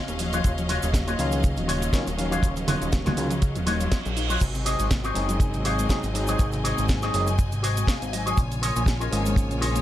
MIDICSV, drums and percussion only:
0, 0, Header, 1, 2, 480
1, 0, Start_track
1, 0, Tempo, 495868
1, 431, Time_signature, 4, 2, 24, 8
1, 9502, End_track
2, 0, Start_track
2, 0, Title_t, "Drums"
2, 78, Note_on_c, 9, 42, 39
2, 81, Note_on_c, 9, 82, 23
2, 82, Note_on_c, 9, 69, 43
2, 175, Note_off_c, 9, 42, 0
2, 178, Note_off_c, 9, 82, 0
2, 179, Note_off_c, 9, 69, 0
2, 184, Note_on_c, 9, 46, 89
2, 187, Note_on_c, 9, 82, 78
2, 281, Note_off_c, 9, 46, 0
2, 284, Note_off_c, 9, 82, 0
2, 318, Note_on_c, 9, 42, 41
2, 321, Note_on_c, 9, 82, 35
2, 324, Note_on_c, 9, 69, 84
2, 415, Note_off_c, 9, 42, 0
2, 418, Note_off_c, 9, 82, 0
2, 421, Note_off_c, 9, 69, 0
2, 428, Note_on_c, 9, 42, 69
2, 431, Note_on_c, 9, 82, 49
2, 432, Note_on_c, 9, 36, 109
2, 439, Note_on_c, 9, 69, 66
2, 525, Note_off_c, 9, 42, 0
2, 528, Note_off_c, 9, 82, 0
2, 529, Note_off_c, 9, 36, 0
2, 536, Note_off_c, 9, 69, 0
2, 561, Note_on_c, 9, 42, 43
2, 563, Note_on_c, 9, 69, 39
2, 564, Note_on_c, 9, 82, 25
2, 658, Note_off_c, 9, 42, 0
2, 660, Note_off_c, 9, 69, 0
2, 661, Note_off_c, 9, 82, 0
2, 670, Note_on_c, 9, 46, 105
2, 672, Note_on_c, 9, 82, 84
2, 766, Note_off_c, 9, 46, 0
2, 769, Note_off_c, 9, 82, 0
2, 798, Note_on_c, 9, 69, 76
2, 803, Note_on_c, 9, 42, 41
2, 806, Note_on_c, 9, 82, 37
2, 895, Note_off_c, 9, 69, 0
2, 900, Note_off_c, 9, 42, 0
2, 903, Note_off_c, 9, 82, 0
2, 907, Note_on_c, 9, 36, 103
2, 910, Note_on_c, 9, 38, 115
2, 911, Note_on_c, 9, 42, 67
2, 914, Note_on_c, 9, 82, 46
2, 916, Note_on_c, 9, 69, 73
2, 1004, Note_off_c, 9, 36, 0
2, 1007, Note_off_c, 9, 38, 0
2, 1008, Note_off_c, 9, 42, 0
2, 1011, Note_off_c, 9, 82, 0
2, 1013, Note_off_c, 9, 69, 0
2, 1042, Note_on_c, 9, 42, 42
2, 1044, Note_on_c, 9, 69, 46
2, 1045, Note_on_c, 9, 82, 24
2, 1139, Note_off_c, 9, 42, 0
2, 1141, Note_off_c, 9, 69, 0
2, 1142, Note_off_c, 9, 82, 0
2, 1152, Note_on_c, 9, 46, 91
2, 1154, Note_on_c, 9, 82, 86
2, 1248, Note_off_c, 9, 46, 0
2, 1251, Note_off_c, 9, 82, 0
2, 1276, Note_on_c, 9, 69, 86
2, 1285, Note_on_c, 9, 42, 41
2, 1288, Note_on_c, 9, 82, 36
2, 1372, Note_off_c, 9, 69, 0
2, 1382, Note_off_c, 9, 42, 0
2, 1385, Note_off_c, 9, 82, 0
2, 1389, Note_on_c, 9, 69, 68
2, 1394, Note_on_c, 9, 36, 110
2, 1395, Note_on_c, 9, 42, 69
2, 1398, Note_on_c, 9, 82, 49
2, 1485, Note_off_c, 9, 69, 0
2, 1490, Note_off_c, 9, 36, 0
2, 1491, Note_off_c, 9, 42, 0
2, 1494, Note_off_c, 9, 82, 0
2, 1517, Note_on_c, 9, 69, 36
2, 1525, Note_on_c, 9, 42, 42
2, 1528, Note_on_c, 9, 82, 24
2, 1614, Note_off_c, 9, 69, 0
2, 1622, Note_off_c, 9, 42, 0
2, 1625, Note_off_c, 9, 82, 0
2, 1635, Note_on_c, 9, 46, 101
2, 1638, Note_on_c, 9, 82, 81
2, 1732, Note_off_c, 9, 46, 0
2, 1735, Note_off_c, 9, 82, 0
2, 1765, Note_on_c, 9, 42, 43
2, 1767, Note_on_c, 9, 69, 90
2, 1768, Note_on_c, 9, 82, 36
2, 1861, Note_off_c, 9, 42, 0
2, 1863, Note_off_c, 9, 69, 0
2, 1864, Note_off_c, 9, 82, 0
2, 1867, Note_on_c, 9, 36, 92
2, 1870, Note_on_c, 9, 69, 77
2, 1873, Note_on_c, 9, 38, 116
2, 1874, Note_on_c, 9, 42, 71
2, 1877, Note_on_c, 9, 82, 46
2, 1963, Note_off_c, 9, 36, 0
2, 1967, Note_off_c, 9, 69, 0
2, 1970, Note_off_c, 9, 38, 0
2, 1971, Note_off_c, 9, 42, 0
2, 1974, Note_off_c, 9, 82, 0
2, 2006, Note_on_c, 9, 69, 48
2, 2009, Note_on_c, 9, 42, 42
2, 2012, Note_on_c, 9, 82, 24
2, 2103, Note_off_c, 9, 69, 0
2, 2106, Note_off_c, 9, 42, 0
2, 2109, Note_off_c, 9, 82, 0
2, 2116, Note_on_c, 9, 46, 86
2, 2119, Note_on_c, 9, 82, 77
2, 2212, Note_off_c, 9, 46, 0
2, 2215, Note_off_c, 9, 82, 0
2, 2248, Note_on_c, 9, 42, 41
2, 2251, Note_on_c, 9, 69, 78
2, 2251, Note_on_c, 9, 82, 37
2, 2345, Note_off_c, 9, 42, 0
2, 2347, Note_off_c, 9, 69, 0
2, 2348, Note_off_c, 9, 82, 0
2, 2350, Note_on_c, 9, 36, 102
2, 2356, Note_on_c, 9, 69, 72
2, 2357, Note_on_c, 9, 42, 72
2, 2360, Note_on_c, 9, 82, 49
2, 2447, Note_off_c, 9, 36, 0
2, 2453, Note_off_c, 9, 69, 0
2, 2454, Note_off_c, 9, 42, 0
2, 2457, Note_off_c, 9, 82, 0
2, 2481, Note_on_c, 9, 69, 39
2, 2487, Note_on_c, 9, 42, 41
2, 2490, Note_on_c, 9, 82, 24
2, 2578, Note_off_c, 9, 69, 0
2, 2584, Note_off_c, 9, 42, 0
2, 2586, Note_off_c, 9, 82, 0
2, 2593, Note_on_c, 9, 46, 106
2, 2593, Note_on_c, 9, 64, 83
2, 2596, Note_on_c, 9, 82, 84
2, 2689, Note_off_c, 9, 64, 0
2, 2690, Note_off_c, 9, 46, 0
2, 2693, Note_off_c, 9, 82, 0
2, 2726, Note_on_c, 9, 42, 43
2, 2729, Note_on_c, 9, 82, 35
2, 2730, Note_on_c, 9, 69, 77
2, 2823, Note_off_c, 9, 42, 0
2, 2826, Note_off_c, 9, 69, 0
2, 2826, Note_off_c, 9, 82, 0
2, 2830, Note_on_c, 9, 69, 64
2, 2832, Note_on_c, 9, 38, 114
2, 2834, Note_on_c, 9, 42, 68
2, 2836, Note_on_c, 9, 36, 101
2, 2837, Note_on_c, 9, 82, 47
2, 2927, Note_off_c, 9, 69, 0
2, 2929, Note_off_c, 9, 38, 0
2, 2931, Note_off_c, 9, 42, 0
2, 2933, Note_off_c, 9, 36, 0
2, 2933, Note_off_c, 9, 82, 0
2, 2961, Note_on_c, 9, 38, 37
2, 2963, Note_on_c, 9, 42, 40
2, 2965, Note_on_c, 9, 82, 23
2, 2968, Note_on_c, 9, 69, 41
2, 2969, Note_on_c, 9, 63, 83
2, 2971, Note_on_c, 9, 64, 91
2, 3058, Note_off_c, 9, 38, 0
2, 3059, Note_off_c, 9, 42, 0
2, 3062, Note_off_c, 9, 82, 0
2, 3065, Note_off_c, 9, 63, 0
2, 3065, Note_off_c, 9, 69, 0
2, 3068, Note_off_c, 9, 64, 0
2, 3070, Note_on_c, 9, 46, 88
2, 3073, Note_on_c, 9, 82, 85
2, 3167, Note_off_c, 9, 46, 0
2, 3170, Note_off_c, 9, 82, 0
2, 3199, Note_on_c, 9, 42, 42
2, 3202, Note_on_c, 9, 82, 37
2, 3206, Note_on_c, 9, 69, 74
2, 3296, Note_off_c, 9, 42, 0
2, 3299, Note_off_c, 9, 82, 0
2, 3303, Note_off_c, 9, 69, 0
2, 3310, Note_on_c, 9, 42, 71
2, 3313, Note_on_c, 9, 82, 45
2, 3314, Note_on_c, 9, 36, 106
2, 3317, Note_on_c, 9, 69, 70
2, 3407, Note_off_c, 9, 42, 0
2, 3410, Note_off_c, 9, 82, 0
2, 3411, Note_off_c, 9, 36, 0
2, 3414, Note_off_c, 9, 69, 0
2, 3441, Note_on_c, 9, 42, 41
2, 3444, Note_on_c, 9, 82, 24
2, 3445, Note_on_c, 9, 69, 42
2, 3538, Note_off_c, 9, 42, 0
2, 3541, Note_off_c, 9, 82, 0
2, 3542, Note_off_c, 9, 69, 0
2, 3550, Note_on_c, 9, 46, 99
2, 3553, Note_on_c, 9, 63, 84
2, 3553, Note_on_c, 9, 82, 78
2, 3647, Note_off_c, 9, 46, 0
2, 3649, Note_off_c, 9, 82, 0
2, 3650, Note_off_c, 9, 63, 0
2, 3683, Note_on_c, 9, 69, 81
2, 3684, Note_on_c, 9, 42, 42
2, 3687, Note_on_c, 9, 82, 37
2, 3779, Note_off_c, 9, 69, 0
2, 3781, Note_off_c, 9, 42, 0
2, 3784, Note_off_c, 9, 82, 0
2, 3791, Note_on_c, 9, 38, 122
2, 3792, Note_on_c, 9, 42, 69
2, 3794, Note_on_c, 9, 36, 101
2, 3795, Note_on_c, 9, 69, 65
2, 3795, Note_on_c, 9, 82, 47
2, 3888, Note_off_c, 9, 38, 0
2, 3889, Note_off_c, 9, 42, 0
2, 3891, Note_off_c, 9, 36, 0
2, 3892, Note_off_c, 9, 69, 0
2, 3892, Note_off_c, 9, 82, 0
2, 3925, Note_on_c, 9, 42, 42
2, 3928, Note_on_c, 9, 82, 24
2, 3930, Note_on_c, 9, 69, 39
2, 4022, Note_off_c, 9, 42, 0
2, 4025, Note_off_c, 9, 82, 0
2, 4027, Note_off_c, 9, 69, 0
2, 4034, Note_on_c, 9, 46, 84
2, 4037, Note_on_c, 9, 82, 77
2, 4131, Note_off_c, 9, 46, 0
2, 4134, Note_off_c, 9, 82, 0
2, 4162, Note_on_c, 9, 69, 77
2, 4164, Note_on_c, 9, 42, 43
2, 4167, Note_on_c, 9, 82, 37
2, 4259, Note_off_c, 9, 69, 0
2, 4261, Note_off_c, 9, 42, 0
2, 4264, Note_off_c, 9, 82, 0
2, 4272, Note_on_c, 9, 42, 69
2, 4272, Note_on_c, 9, 49, 79
2, 4272, Note_on_c, 9, 69, 72
2, 4273, Note_on_c, 9, 36, 103
2, 4274, Note_on_c, 9, 82, 48
2, 4368, Note_off_c, 9, 42, 0
2, 4368, Note_off_c, 9, 49, 0
2, 4369, Note_off_c, 9, 69, 0
2, 4370, Note_off_c, 9, 36, 0
2, 4371, Note_off_c, 9, 82, 0
2, 4402, Note_on_c, 9, 69, 46
2, 4404, Note_on_c, 9, 42, 41
2, 4407, Note_on_c, 9, 82, 23
2, 4499, Note_off_c, 9, 69, 0
2, 4501, Note_off_c, 9, 42, 0
2, 4504, Note_off_c, 9, 82, 0
2, 4511, Note_on_c, 9, 46, 115
2, 4514, Note_on_c, 9, 82, 84
2, 4608, Note_off_c, 9, 46, 0
2, 4611, Note_off_c, 9, 82, 0
2, 4639, Note_on_c, 9, 69, 90
2, 4643, Note_on_c, 9, 42, 42
2, 4645, Note_on_c, 9, 82, 34
2, 4736, Note_off_c, 9, 69, 0
2, 4739, Note_off_c, 9, 42, 0
2, 4742, Note_off_c, 9, 82, 0
2, 4750, Note_on_c, 9, 38, 125
2, 4751, Note_on_c, 9, 42, 67
2, 4751, Note_on_c, 9, 69, 69
2, 4754, Note_on_c, 9, 36, 116
2, 4754, Note_on_c, 9, 82, 43
2, 4846, Note_off_c, 9, 38, 0
2, 4848, Note_off_c, 9, 42, 0
2, 4848, Note_off_c, 9, 69, 0
2, 4850, Note_off_c, 9, 36, 0
2, 4851, Note_off_c, 9, 82, 0
2, 4881, Note_on_c, 9, 69, 46
2, 4883, Note_on_c, 9, 42, 43
2, 4886, Note_on_c, 9, 82, 22
2, 4978, Note_off_c, 9, 69, 0
2, 4980, Note_off_c, 9, 42, 0
2, 4983, Note_off_c, 9, 82, 0
2, 4989, Note_on_c, 9, 46, 94
2, 4992, Note_on_c, 9, 82, 81
2, 5086, Note_off_c, 9, 46, 0
2, 5089, Note_off_c, 9, 82, 0
2, 5119, Note_on_c, 9, 42, 44
2, 5122, Note_on_c, 9, 82, 34
2, 5129, Note_on_c, 9, 69, 85
2, 5216, Note_off_c, 9, 42, 0
2, 5219, Note_off_c, 9, 82, 0
2, 5226, Note_off_c, 9, 69, 0
2, 5226, Note_on_c, 9, 36, 117
2, 5230, Note_on_c, 9, 42, 70
2, 5232, Note_on_c, 9, 82, 47
2, 5235, Note_on_c, 9, 69, 72
2, 5322, Note_off_c, 9, 36, 0
2, 5326, Note_off_c, 9, 42, 0
2, 5329, Note_off_c, 9, 82, 0
2, 5332, Note_off_c, 9, 69, 0
2, 5361, Note_on_c, 9, 42, 43
2, 5361, Note_on_c, 9, 69, 38
2, 5363, Note_on_c, 9, 82, 22
2, 5457, Note_off_c, 9, 42, 0
2, 5458, Note_off_c, 9, 69, 0
2, 5460, Note_off_c, 9, 82, 0
2, 5469, Note_on_c, 9, 46, 104
2, 5472, Note_on_c, 9, 82, 75
2, 5566, Note_off_c, 9, 46, 0
2, 5569, Note_off_c, 9, 82, 0
2, 5605, Note_on_c, 9, 42, 43
2, 5605, Note_on_c, 9, 69, 81
2, 5608, Note_on_c, 9, 82, 36
2, 5701, Note_off_c, 9, 42, 0
2, 5702, Note_off_c, 9, 69, 0
2, 5704, Note_off_c, 9, 82, 0
2, 5706, Note_on_c, 9, 36, 92
2, 5706, Note_on_c, 9, 69, 69
2, 5711, Note_on_c, 9, 38, 127
2, 5713, Note_on_c, 9, 42, 71
2, 5716, Note_on_c, 9, 82, 44
2, 5802, Note_off_c, 9, 36, 0
2, 5803, Note_off_c, 9, 69, 0
2, 5808, Note_off_c, 9, 38, 0
2, 5809, Note_off_c, 9, 42, 0
2, 5812, Note_off_c, 9, 82, 0
2, 5839, Note_on_c, 9, 69, 41
2, 5845, Note_on_c, 9, 42, 43
2, 5848, Note_on_c, 9, 82, 23
2, 5936, Note_off_c, 9, 69, 0
2, 5942, Note_off_c, 9, 42, 0
2, 5945, Note_off_c, 9, 82, 0
2, 5954, Note_on_c, 9, 46, 88
2, 5957, Note_on_c, 9, 82, 74
2, 6050, Note_off_c, 9, 46, 0
2, 6053, Note_off_c, 9, 82, 0
2, 6072, Note_on_c, 9, 69, 94
2, 6087, Note_on_c, 9, 42, 42
2, 6090, Note_on_c, 9, 82, 34
2, 6169, Note_off_c, 9, 69, 0
2, 6183, Note_off_c, 9, 42, 0
2, 6186, Note_off_c, 9, 82, 0
2, 6186, Note_on_c, 9, 69, 74
2, 6189, Note_on_c, 9, 36, 127
2, 6195, Note_on_c, 9, 42, 71
2, 6198, Note_on_c, 9, 82, 44
2, 6283, Note_off_c, 9, 69, 0
2, 6286, Note_off_c, 9, 36, 0
2, 6292, Note_off_c, 9, 42, 0
2, 6295, Note_off_c, 9, 82, 0
2, 6314, Note_on_c, 9, 69, 42
2, 6326, Note_on_c, 9, 42, 39
2, 6329, Note_on_c, 9, 82, 22
2, 6411, Note_off_c, 9, 69, 0
2, 6423, Note_off_c, 9, 42, 0
2, 6426, Note_off_c, 9, 82, 0
2, 6436, Note_on_c, 9, 46, 112
2, 6439, Note_on_c, 9, 82, 78
2, 6533, Note_off_c, 9, 46, 0
2, 6536, Note_off_c, 9, 82, 0
2, 6563, Note_on_c, 9, 69, 77
2, 6567, Note_on_c, 9, 42, 39
2, 6570, Note_on_c, 9, 82, 32
2, 6660, Note_off_c, 9, 69, 0
2, 6664, Note_off_c, 9, 42, 0
2, 6664, Note_on_c, 9, 69, 59
2, 6667, Note_off_c, 9, 82, 0
2, 6670, Note_on_c, 9, 36, 106
2, 6672, Note_on_c, 9, 38, 120
2, 6673, Note_on_c, 9, 42, 64
2, 6676, Note_on_c, 9, 82, 44
2, 6761, Note_off_c, 9, 69, 0
2, 6767, Note_off_c, 9, 36, 0
2, 6769, Note_off_c, 9, 38, 0
2, 6770, Note_off_c, 9, 42, 0
2, 6773, Note_off_c, 9, 82, 0
2, 6797, Note_on_c, 9, 69, 47
2, 6803, Note_on_c, 9, 38, 38
2, 6804, Note_on_c, 9, 42, 41
2, 6807, Note_on_c, 9, 82, 22
2, 6894, Note_off_c, 9, 69, 0
2, 6900, Note_off_c, 9, 38, 0
2, 6901, Note_off_c, 9, 42, 0
2, 6904, Note_off_c, 9, 82, 0
2, 6911, Note_on_c, 9, 46, 95
2, 6914, Note_on_c, 9, 82, 73
2, 7008, Note_off_c, 9, 46, 0
2, 7011, Note_off_c, 9, 82, 0
2, 7038, Note_on_c, 9, 69, 76
2, 7043, Note_on_c, 9, 42, 39
2, 7046, Note_on_c, 9, 82, 33
2, 7135, Note_off_c, 9, 69, 0
2, 7140, Note_off_c, 9, 42, 0
2, 7143, Note_off_c, 9, 82, 0
2, 7149, Note_on_c, 9, 69, 69
2, 7151, Note_on_c, 9, 36, 113
2, 7151, Note_on_c, 9, 42, 68
2, 7154, Note_on_c, 9, 82, 42
2, 7246, Note_off_c, 9, 69, 0
2, 7247, Note_off_c, 9, 36, 0
2, 7248, Note_off_c, 9, 42, 0
2, 7251, Note_off_c, 9, 82, 0
2, 7281, Note_on_c, 9, 69, 42
2, 7282, Note_on_c, 9, 42, 38
2, 7285, Note_on_c, 9, 82, 22
2, 7378, Note_off_c, 9, 69, 0
2, 7379, Note_off_c, 9, 42, 0
2, 7382, Note_off_c, 9, 82, 0
2, 7394, Note_on_c, 9, 46, 112
2, 7397, Note_on_c, 9, 82, 77
2, 7491, Note_off_c, 9, 46, 0
2, 7494, Note_off_c, 9, 82, 0
2, 7523, Note_on_c, 9, 42, 42
2, 7523, Note_on_c, 9, 69, 86
2, 7526, Note_on_c, 9, 82, 34
2, 7620, Note_off_c, 9, 42, 0
2, 7620, Note_off_c, 9, 69, 0
2, 7622, Note_on_c, 9, 36, 101
2, 7623, Note_off_c, 9, 82, 0
2, 7630, Note_on_c, 9, 38, 126
2, 7632, Note_on_c, 9, 42, 67
2, 7635, Note_on_c, 9, 82, 44
2, 7636, Note_on_c, 9, 69, 72
2, 7719, Note_off_c, 9, 36, 0
2, 7727, Note_off_c, 9, 38, 0
2, 7728, Note_off_c, 9, 42, 0
2, 7731, Note_off_c, 9, 82, 0
2, 7733, Note_off_c, 9, 69, 0
2, 7764, Note_on_c, 9, 42, 41
2, 7767, Note_on_c, 9, 82, 22
2, 7771, Note_on_c, 9, 69, 42
2, 7861, Note_off_c, 9, 42, 0
2, 7864, Note_off_c, 9, 82, 0
2, 7868, Note_off_c, 9, 69, 0
2, 7873, Note_on_c, 9, 46, 94
2, 7875, Note_on_c, 9, 82, 70
2, 7969, Note_off_c, 9, 46, 0
2, 7972, Note_off_c, 9, 82, 0
2, 8004, Note_on_c, 9, 42, 39
2, 8007, Note_on_c, 9, 69, 85
2, 8007, Note_on_c, 9, 82, 34
2, 8101, Note_off_c, 9, 42, 0
2, 8103, Note_off_c, 9, 82, 0
2, 8104, Note_off_c, 9, 69, 0
2, 8104, Note_on_c, 9, 69, 72
2, 8107, Note_on_c, 9, 36, 122
2, 8113, Note_on_c, 9, 42, 67
2, 8116, Note_on_c, 9, 82, 46
2, 8201, Note_off_c, 9, 69, 0
2, 8204, Note_off_c, 9, 36, 0
2, 8210, Note_off_c, 9, 42, 0
2, 8213, Note_off_c, 9, 82, 0
2, 8244, Note_on_c, 9, 42, 41
2, 8244, Note_on_c, 9, 69, 42
2, 8247, Note_on_c, 9, 82, 22
2, 8341, Note_off_c, 9, 42, 0
2, 8341, Note_off_c, 9, 69, 0
2, 8344, Note_off_c, 9, 82, 0
2, 8353, Note_on_c, 9, 46, 118
2, 8355, Note_on_c, 9, 82, 78
2, 8449, Note_off_c, 9, 46, 0
2, 8452, Note_off_c, 9, 82, 0
2, 8481, Note_on_c, 9, 69, 85
2, 8485, Note_on_c, 9, 42, 38
2, 8488, Note_on_c, 9, 82, 33
2, 8577, Note_off_c, 9, 69, 0
2, 8579, Note_on_c, 9, 36, 118
2, 8582, Note_off_c, 9, 42, 0
2, 8585, Note_off_c, 9, 82, 0
2, 8587, Note_on_c, 9, 69, 62
2, 8593, Note_on_c, 9, 38, 127
2, 8595, Note_on_c, 9, 42, 65
2, 8597, Note_on_c, 9, 82, 45
2, 8676, Note_off_c, 9, 36, 0
2, 8684, Note_off_c, 9, 69, 0
2, 8690, Note_off_c, 9, 38, 0
2, 8691, Note_off_c, 9, 42, 0
2, 8694, Note_off_c, 9, 82, 0
2, 8722, Note_on_c, 9, 69, 44
2, 8726, Note_on_c, 9, 42, 37
2, 8729, Note_on_c, 9, 82, 22
2, 8819, Note_off_c, 9, 69, 0
2, 8823, Note_off_c, 9, 42, 0
2, 8826, Note_off_c, 9, 82, 0
2, 8833, Note_on_c, 9, 46, 102
2, 8836, Note_on_c, 9, 82, 73
2, 8930, Note_off_c, 9, 46, 0
2, 8933, Note_off_c, 9, 82, 0
2, 8961, Note_on_c, 9, 69, 73
2, 8967, Note_on_c, 9, 42, 39
2, 8970, Note_on_c, 9, 82, 32
2, 9058, Note_off_c, 9, 69, 0
2, 9064, Note_off_c, 9, 42, 0
2, 9064, Note_on_c, 9, 36, 121
2, 9067, Note_off_c, 9, 82, 0
2, 9075, Note_on_c, 9, 42, 66
2, 9075, Note_on_c, 9, 69, 62
2, 9078, Note_on_c, 9, 82, 45
2, 9160, Note_off_c, 9, 36, 0
2, 9171, Note_off_c, 9, 69, 0
2, 9172, Note_off_c, 9, 42, 0
2, 9175, Note_off_c, 9, 82, 0
2, 9205, Note_on_c, 9, 42, 40
2, 9207, Note_on_c, 9, 69, 39
2, 9208, Note_on_c, 9, 82, 22
2, 9302, Note_off_c, 9, 42, 0
2, 9304, Note_off_c, 9, 69, 0
2, 9305, Note_off_c, 9, 82, 0
2, 9315, Note_on_c, 9, 46, 112
2, 9318, Note_on_c, 9, 82, 76
2, 9411, Note_off_c, 9, 46, 0
2, 9414, Note_off_c, 9, 82, 0
2, 9444, Note_on_c, 9, 42, 41
2, 9446, Note_on_c, 9, 69, 80
2, 9447, Note_on_c, 9, 82, 33
2, 9502, Note_off_c, 9, 42, 0
2, 9502, Note_off_c, 9, 69, 0
2, 9502, Note_off_c, 9, 82, 0
2, 9502, End_track
0, 0, End_of_file